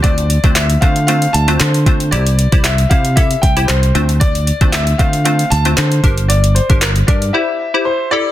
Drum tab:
HH |xxxxxxxxxxxxxxxx|xxxxxxxxxxxxxxxx|xxxxxxxxxxxxxxxx|xxxxxxxx--------|
CP |----x-------x---|----x-------x---|----x-------x---|----x-----------|
SD |----o-------o---|----o-------o---|----o-------o---|----o-----------|
BD |o--o--o-------o-|---o--o-o-o-----|o--o--o-------o-|---o--o---------|